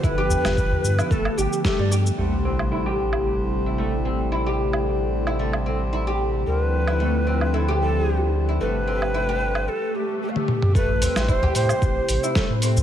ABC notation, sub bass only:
X:1
M:4/4
L:1/16
Q:"Swing 16ths" 1/4=112
K:Am
V:1 name="Sub bass" clef=bass
G,,,2 z G,,,2 z G,, z G,,, z G,,, z2 G,,2 z | A,,,16- | A,,,16 | D,,16 |
G,,,8 z8 | A,,,2 z A,,,2 z A,, z A,,, z A,,, z2 A,,2 z |]